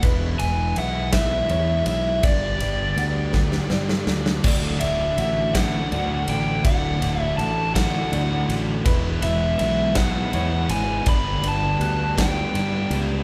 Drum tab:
CC |------------|------------|x-----------|------------|
RD |x-x-x-x-x-x-|x-x-x-------|--x-x-x-x-x-|x-x-x-x-x-x-|
SD |------o-----|------oooooo|------o-----|------o-----|
BD |o-----o-----|o-----o-----|o-----o-----|o-----o-----|

CC |------------|------------|
RD |x-x-x-x-x-x-|x-x-x-x-x-x-|
SD |------o-----|------o-----|
BD |o-----o-----|o-----o-----|